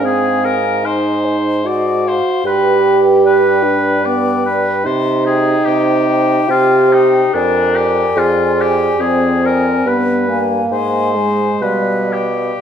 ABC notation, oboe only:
X:1
M:3/4
L:1/8
Q:1/4=73
K:Gphr
V:1 name="Oboe"
A B c2 d c | =B z B2 d B | c A G2 F E | D G F G A B |
=B z c2 B G |]